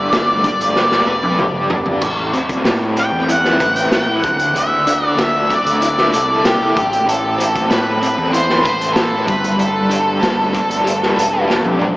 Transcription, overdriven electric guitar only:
0.00 1.07 G3 medium
0.00 0.43 D4 medium
0.00 0.15 B4 medium
0.12 2.64 A3 medium
0.44 1.69 D4 medium
0.77 1.38 G4 medium
1.07 2.02 B4 medium
1.39 2.02 G4 medium
1.70 2.02 D4 medium
2.01 3.59 A2 medium
2.33 2.95 C4 medium
2.65 5.17 A3 medium
2.96 4.22 C4 medium
3.29 3.92 E4 medium
3.60 4.23 B4 medium
3.92 4.27 E4 medium
4.24 4.54 D3 medium
4.55 6.12 D3 medium
4.87 5.48 D4 medium
5.17 7.69 A3 medium
5.49 6.75 D4 medium
5.81 6.43 E4 medium
6.13 8.63 A4 medium
6.44 6.76 E4 medium
6.75 7.05 A2 medium
7.06 8.64 A2 medium
7.38 8.00 C4 medium
7.69 9.29 A3 medium
8.01 9.28 C4 medium
8.33 8.95 E4 medium
8.63 9.27 B4 medium
8.96 9.28 E4 medium
9.26 9.57 G3 medium
9.58 11.16 G3 medium
9.90 10.51 D4 medium
10.21 11.79 A3 medium
10.53 11.78 D4 medium
10.84 11.46 G4 medium
11.16 11.97 B4 medium
11.48 11.97 G4 medium
11.79 11.97 D4 medium

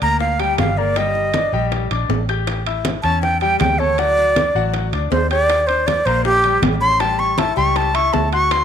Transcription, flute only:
0.02 0.19 A#5 medium
0.20 0.41 F5 medium
0.40 0.58 G5 medium
0.59 0.79 F5 medium
0.77 0.98 D5 medium
0.97 1.70 D#5 medium
3.03 3.22 A5 loud
3.22 3.40 G5 medium
3.41 3.59 G5 medium
3.60 3.80 G5 medium
3.79 4.00 C#5 loud
3.99 4.72 D5 loud
5.11 5.30 C5 medium
5.31 5.68 D5 loud
5.67 5.88 C5 medium
5.87 6.07 D5 medium
6.06 6.24 C5 medium
6.25 6.61 G4 loud
6.81 7.02 C6 loud
7.00 7.21 A5 loud
7.19 7.40 C#6 medium
7.39 7.56 A5 loud
7.57 7.78 C#6 medium
7.77 7.97 A5 medium
7.95 8.14 C#6 loud
8.13 8.32 A5 medium
8.33 8.53 C#6 loud
8.52 8.64 C6 medium

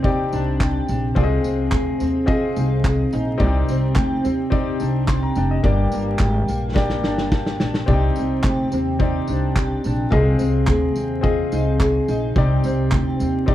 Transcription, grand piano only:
0.00 0.03 C4 loud
0.00 1.04 C4 medium
0.00 0.04 D#4 medium
0.00 1.04 D#4 medium
0.00 0.05 G4 medium
0.00 0.05 D5 loud
0.05 1.05 G4 medium
0.05 1.05 D5 loud
1.15 2.16 C4 medium
1.15 2.16 F4 medium
1.15 2.17 G#4 medium
1.15 1.23 D5 medium
1.23 2.20 D#5 medium
2.26 3.27 C4 medium
2.26 3.28 F4 medium
2.26 3.28 G#4 medium
2.26 3.28 D#5 loud
3.38 4.39 C4 loud
3.38 4.39 D#4 medium
3.38 4.40 G4 medium
3.38 4.41 D5 loud
4.50 5.51 C4 medium
4.50 5.52 D#4 medium
4.50 5.52 G4 medium
4.50 5.08 D5 medium
5.08 5.22 C6 medium
5.23 5.36 A#5 medium
5.37 5.50 G5 medium
5.51 5.77 D#5 medium
5.63 6.64 A#3 medium
5.63 6.64 D4 medium
5.63 6.65 G4 medium
5.63 6.65 D5 loud
6.74 7.75 A#3 medium
6.74 7.76 D4 medium
6.74 7.76 G4 medium
6.74 7.77 D5 loud
7.86 8.87 C4 medium
7.86 7.94 D4 medium
7.86 8.88 G4 medium
7.86 8.88 D5 medium
7.93 8.91 D#4 medium
8.99 10.00 C4 medium
8.99 10.00 D#4 medium
8.99 10.00 G4 medium
8.99 10.01 D5 medium
10.11 10.18 A#3 medium
10.11 11.11 F4 medium
10.11 11.12 G#4 medium
10.11 11.12 D#5 loud
10.17 11.15 C4 medium
11.21 12.23 C4 medium
11.21 12.23 F4 medium
11.21 12.23 G#4 medium
11.21 12.24 D#5 medium
12.36 13.36 C4 medium
12.36 13.36 D#4 medium
12.36 13.37 G4 medium
12.36 13.37 D5 loud
13.46 13.55 C4 medium
13.46 13.55 D#4 medium
13.46 13.55 G4 medium
13.46 13.55 D5 medium

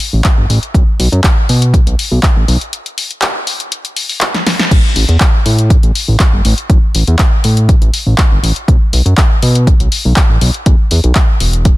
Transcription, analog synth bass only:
0.13 0.21 A1 medium
0.38 0.46 G1 medium
0.50 0.59 A1 loud
0.75 0.84 B1 loud
0.99 1.08 B1 medium
1.12 1.21 F#2 medium
1.49 1.81 B2 medium
1.87 1.95 B1 medium
2.11 2.20 B1 medium
2.36 2.45 A1 medium
2.48 2.57 B1 loud
4.71 4.80 A1 loud
4.96 5.05 A1 medium
5.09 5.17 E2 medium
5.46 5.77 A2 medium
5.83 5.92 A1 medium
6.08 6.16 A1 medium
6.33 6.42 G1 medium
6.45 6.54 A1 loud
6.70 6.79 A1 loud
6.95 7.04 A1 medium
7.08 7.16 E2 loud
7.45 7.76 A2 medium
7.82 7.90 A1 medium
8.06 8.15 A1 medium
8.31 8.40 G1 medium
8.43 8.52 A1 loud
8.68 8.77 B1 loud
8.93 9.02 B1 medium
9.06 9.14 F#2 loud
9.43 9.74 B2 medium
9.80 9.88 B1 medium
10.05 10.13 B1 medium
10.30 10.38 A1 medium
10.42 10.51 B1 loud
10.66 10.75 E2 loud
10.91 11.00 E2 medium
11.04 11.12 B1 loud
11.40 11.72 E1 medium

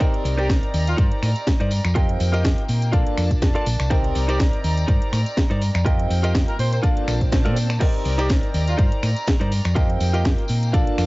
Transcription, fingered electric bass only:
0.25 0.58 C2 loud
0.74 0.94 D#2 medium
0.98 1.09 G2 medium
1.23 1.33 A2 loud
1.60 1.79 G2 loud
1.85 2.16 F2 medium
2.20 2.53 F2 loud
2.69 2.95 A#2 medium
2.93 3.04 A#1 medium
3.18 3.33 F2 medium
3.31 3.40 A#1 medium
3.42 3.53 F1 medium
3.67 3.77 A#1 medium
3.80 4.12 C2 medium
4.15 4.49 C2 loud
4.64 4.84 D#2 medium
4.88 4.99 G2 medium
5.13 5.23 A2 loud
5.51 5.69 G2 loud
5.75 6.07 F2 loud
6.10 6.44 F2 loud
6.59 6.79 A#2 medium
7.08 7.47 A#1 loud
7.46 7.77 A#2 loud
8.05 8.39 C2 loud
8.54 8.74 D#2 medium
8.79 8.89 G2 medium
9.03 9.14 A2 loud
9.41 9.59 G2 loud
9.65 9.97 F2 loud
10.01 10.34 F2 loud
10.50 10.75 A#2 medium
10.74 10.84 A#1 medium
10.98 11.06 F2 medium

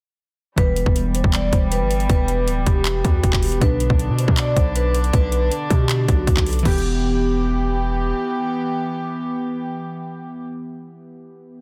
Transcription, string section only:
0.58 3.58 E3 medium
0.58 3.58 G3 medium
0.58 6.61 B3 medium
3.61 6.62 D3 medium
3.61 6.62 D4 medium
6.65 10.45 E3 medium
6.65 10.45 B3 medium
6.65 10.45 G4 medium

